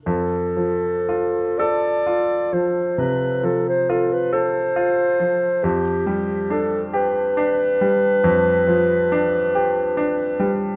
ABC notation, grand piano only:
X:1
M:12/8
L:1/8
Q:3/8=46
K:Flyd
V:1 name="Grand piano"
F,, F, F A F F, C, F, F A F F, | F,, G, D G D G, F,, F, D G D G, |]